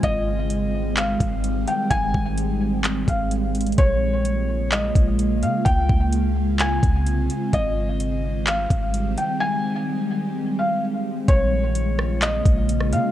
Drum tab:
HH |x-------x-------x---x---x---x---|x-------x-------x---x---x---xxxx|x-------x-------x---x---x---x---|x-------x-------x---x---x---x---|
CP |----------------x---------------|----------------x---------------|----------------x---------------|----------------x---------------|
SD |--------------------------------|--------------------------------|--------------------------------|--------------------------------|
BD |o-------------------o-----------|o---o---------------o-----------|o-------------------o-----------|o---o---------------o-----------|

HH |x-------x-------x---x---x---x---|--------------------------------|x-------x-------x---x---x---x---|
CP |----------------x---------------|--------------------------------|----------------x---------------|
SD |--------------------------------|--------------------------------|------------r-------------r-----|
BD |o-------------------o-----------|--------------------------------|o-------------------o-----------|